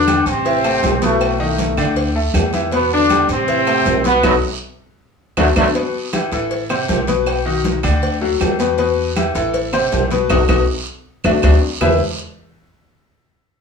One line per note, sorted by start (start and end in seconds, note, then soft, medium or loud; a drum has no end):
0.00 0.20 E2 loud
0.00 0.25 D3 medium
0.00 0.24 D4 loud
0.07 0.38 G3 medium
0.07 0.38 G4 medium
0.07 0.39 G5 medium
0.07 cowbell medium
0.07 high conga loud
0.07 low timbale medium
0.07 low agogo loud
0.07 short guiro medium
0.07 claves medium
0.26 0.79 A1 medium
0.26 1.03 C3 medium
0.26 1.02 C4 loud
0.26 cowbell medium
0.26 high conga soft
0.26 low agogo medium
0.26 short guiro medium
0.45 0.61 E3 medium
0.45 0.61 E4 medium
0.45 0.61 E5 medium
0.45 cowbell loud
0.45 high conga soft
0.45 long guiro medium
0.64 0.95 A3 medium
0.64 0.95 A4 medium
0.64 0.95 A5 medium
0.64 cowbell medium
0.64 high conga soft
0.64 low agogo loud
0.64 claves medium
0.83 1.72 B1 loud
0.83 cowbell medium
0.83 high conga medium
0.83 low timbale loud
0.83 low agogo loud
0.83 short guiro medium
1.02 1.38 A2 medium
1.02 1.33 B2 loud
1.02 1.38 A3 medium
1.02 1.33 B3 medium
1.02 1.33 B4 medium
1.02 cowbell medium
1.02 high conga medium
1.02 short guiro medium
1.21 cowbell loud
1.21 high conga soft
1.21 low agogo loud
1.21 long guiro medium
1.21 claves medium
1.40 2.24 A2 medium
1.40 1.71 D#3 medium
1.40 2.23 A3 medium
1.40 1.71 D#4 medium
1.40 1.71 D#5 medium
1.40 high conga soft
1.40 low agogo medium
1.58 cowbell medium
1.58 high conga medium
1.58 low timbale medium
1.58 short guiro medium
1.77 2.30 D2 medium
1.77 2.09 D3 loud
1.77 2.09 D4 loud
1.77 2.09 D5 loud
1.77 high conga soft
1.77 low conga medium
1.77 low agogo loud
1.77 short guiro medium
1.77 claves medium
1.96 cowbell loud
1.96 high conga soft
1.96 low agogo medium
1.96 long guiro medium
2.15 2.46 A3 medium
2.15 2.47 A4 medium
2.15 2.47 A5 medium
2.15 high conga soft
2.34 3.23 E2 loud
2.34 cowbell medium
2.34 high conga loud
2.34 low timbale loud
2.34 low agogo loud
2.34 short guiro medium
2.34 claves medium
2.53 2.69 E3 medium
2.53 2.69 E4 medium
2.53 2.69 E5 medium
2.53 cowbell medium
2.53 high conga medium
2.53 low agogo medium
2.53 short guiro medium
2.72 3.03 B2 medium
2.72 2.91 B2 medium
2.72 3.03 B3 medium
2.72 2.90 B3 loud
2.72 3.04 B4 medium
2.72 cowbell loud
2.72 high conga soft
2.72 low agogo medium
2.72 long guiro medium
2.91 3.27 D3 medium
2.91 3.27 D4 loud
2.91 high conga soft
3.10 3.41 G3 medium
3.10 3.41 G4 medium
3.10 3.41 G5 medium
3.10 cowbell medium
3.10 high conga loud
3.10 low timbale medium
3.10 low agogo loud
3.10 short guiro medium
3.10 claves medium
3.28 3.81 A1 medium
3.28 4.06 C3 medium
3.28 4.06 C4 loud
3.28 cowbell medium
3.28 high conga soft
3.28 low agogo medium
3.28 short guiro medium
3.48 3.64 E3 medium
3.48 3.64 E4 medium
3.48 3.64 E5 medium
3.48 cowbell loud
3.48 high conga soft
3.48 long guiro medium
3.67 3.98 A3 medium
3.67 3.98 A4 medium
3.67 3.98 A5 medium
3.67 cowbell medium
3.67 high conga soft
3.67 low agogo loud
3.67 claves medium
3.85 4.21 B1 medium
3.85 cowbell medium
3.85 high conga medium
3.85 low timbale medium
3.85 low agogo loud
3.85 short guiro medium
4.04 4.20 B2 medium
4.04 4.23 B2 medium
4.04 4.20 B3 medium
4.04 4.23 B3 loud
4.04 4.21 B4 medium
4.04 cowbell medium
4.04 high conga medium
4.04 short guiro medium
4.23 4.38 B1 loud
4.23 4.33 F#3 loud
4.23 4.33 A3 loud
4.23 4.36 B3 loud
4.23 4.33 B3 loud
4.23 4.36 D#4 loud
4.23 4.36 F#4 loud
4.23 cowbell loud
4.23 high conga loud
4.23 high timbale loud
4.23 long guiro loud
4.23 claves loud
5.37 5.51 D2 loud
5.37 5.47 D3 loud
5.37 5.47 F#3 medium
5.37 5.49 A3 medium
5.37 5.47 A3 loud
5.37 5.49 D4 loud
5.37 5.49 F#4 loud
5.37 cowbell loud
5.37 high conga loud
5.37 high timbale loud
5.37 long guiro loud
5.37 claves loud
5.56 5.70 D2 loud
5.56 5.66 D3 loud
5.56 5.66 F#3 medium
5.56 5.68 A3 loud
5.56 5.66 A3 loud
5.56 5.68 D4 loud
5.56 5.68 F#4 loud
5.56 cowbell loud
5.56 high conga loud
5.56 high timbale loud
5.56 long guiro loud
5.56 claves loud
5.75 6.06 B2 medium
5.75 6.07 B3 medium
5.75 6.07 B4 medium
5.75 cowbell loud
5.75 high conga soft
5.75 low agogo medium
5.75 long guiro medium
5.95 high conga soft
6.13 6.28 E3 medium
6.13 6.28 E4 medium
6.13 6.29 G4 medium
6.13 cowbell medium
6.13 high conga loud
6.13 low timbale medium
6.13 low agogo loud
6.13 short guiro medium
6.13 claves medium
6.32 6.85 A1 medium
6.32 6.63 E3 medium
6.32 6.63 E4 medium
6.32 6.63 A4 medium
6.32 cowbell medium
6.32 high conga soft
6.32 low agogo medium
6.32 short guiro medium
6.51 cowbell loud
6.51 high conga soft
6.51 long guiro medium
6.70 7.01 C3 loud
6.70 7.01 C4 medium
6.70 7.01 C5 medium
6.70 cowbell medium
6.70 high conga soft
6.70 low agogo loud
6.70 claves medium
6.88 7.78 B1 medium
6.88 cowbell medium
6.88 high conga medium
6.88 low timbale medium
6.88 low agogo loud
6.88 short guiro medium
7.07 7.39 B2 medium
7.07 7.39 B3 medium
7.07 7.39 B4 medium
7.07 cowbell medium
7.07 high conga medium
7.07 short guiro medium
7.26 cowbell loud
7.26 high conga soft
7.26 low agogo loud
7.26 long guiro medium
7.26 claves medium
7.45 7.77 D#3 medium
7.45 7.77 D#4 medium
7.45 7.77 F#4 medium
7.45 high conga soft
7.45 low agogo medium
7.64 cowbell medium
7.64 high conga loud
7.64 low timbale medium
7.64 short guiro medium
7.83 8.37 D2 loud
7.83 8.14 D3 loud
7.83 8.15 D4 medium
7.83 8.15 D5 loud
7.83 high conga soft
7.83 low conga medium
7.83 low agogo loud
7.83 short guiro medium
7.83 claves medium
8.02 cowbell loud
8.02 high conga soft
8.02 low agogo medium
8.02 long guiro medium
8.21 8.52 F#3 medium
8.21 8.53 F#4 medium
8.21 8.53 A4 medium
8.21 high conga soft
8.40 9.29 E2 loud
8.40 cowbell medium
8.40 high conga medium
8.40 low timbale loud
8.40 low agogo loud
8.40 short guiro medium
8.40 claves medium
8.59 8.75 B2 medium
8.59 8.75 B3 loud
8.59 8.75 B4 medium
8.59 cowbell medium
8.59 low agogo medium
8.59 short guiro medium
8.78 9.09 B2 medium
8.78 9.10 B3 medium
8.78 9.10 B4 medium
8.78 cowbell loud
8.78 high conga soft
8.78 low agogo medium
8.78 long guiro medium
8.98 high conga soft
9.16 9.32 E3 medium
9.16 9.32 E4 medium
9.16 9.32 G4 medium
9.16 cowbell medium
9.16 high conga loud
9.16 low timbale medium
9.16 low agogo loud
9.16 short guiro medium
9.16 claves medium
9.35 9.88 A1 medium
9.35 9.66 E3 medium
9.35 9.66 E4 medium
9.35 9.66 A4 medium
9.35 cowbell medium
9.35 high conga soft
9.35 low agogo medium
9.35 short guiro medium
9.54 cowbell loud
9.54 high conga soft
9.54 long guiro medium
9.73 10.04 C3 medium
9.73 10.04 C4 medium
9.73 10.04 C5 medium
9.73 cowbell medium
9.73 high conga soft
9.73 low agogo loud
9.73 claves medium
9.92 10.27 B1 medium
9.92 cowbell medium
9.92 high conga loud
9.92 low timbale medium
9.92 low agogo loud
9.92 short guiro medium
10.11 10.27 B2 medium
10.11 10.27 B3 medium
10.11 10.27 B4 medium
10.11 cowbell medium
10.11 high conga medium
10.11 short guiro medium
10.29 10.44 B1 loud
10.29 10.42 B3 loud
10.29 10.42 D#4 loud
10.29 10.42 F#4 loud
10.29 cowbell loud
10.29 high conga medium
10.29 high timbale loud
10.29 long guiro loud
10.29 claves loud
10.48 10.63 B1 loud
10.48 10.61 B3 loud
10.48 10.61 D#4 loud
10.48 10.61 F#4 loud
10.48 cowbell loud
10.48 high conga loud
10.48 high timbale loud
10.48 long guiro loud
10.48 claves loud
11.24 11.39 D2 loud
11.24 11.37 A3 loud
11.24 11.37 D4 medium
11.24 11.37 F#4 loud
11.24 cowbell loud
11.24 high conga loud
11.24 high timbale loud
11.24 long guiro loud
11.24 claves loud
11.43 11.58 D2 loud
11.43 11.56 A3 medium
11.43 11.56 D4 loud
11.43 11.56 F#4 medium
11.43 cowbell loud
11.43 high conga loud
11.43 high timbale loud
11.43 long guiro loud
11.43 claves loud
11.81 11.99 E2 loud
11.81 11.99 E3 loud
11.81 11.99 B3 medium
11.81 11.99 E4 medium
11.81 11.99 G4 medium
11.81 11.99 B4 medium
11.81 11.99 E5 loud
11.81 low bongo loud
11.81 low conga loud
11.81 low timbale loud
11.81 claves loud